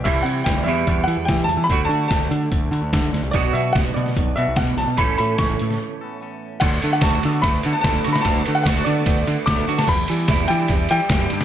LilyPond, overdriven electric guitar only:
\new Staff \with { instrumentName = "Overdriven electric guitar" } { \time 4/4 \key d \major \tempo 4 = 147 <c e g c' e'>4. <e, b, e g b e'>2~ <e, b, e g b e'>8 | <d a d' fis'>1 | <b, fis b d' fis'>1 | <a, e a cis' a'>1 |
d8 a8 fis'8 b8 a8 d8 a8 fis'8 | d8 a8 fis'8 b8 a8 d8 a8 fis'8 | e,8 g8 e'8 d'8 g8 e8 g8 g,8 | }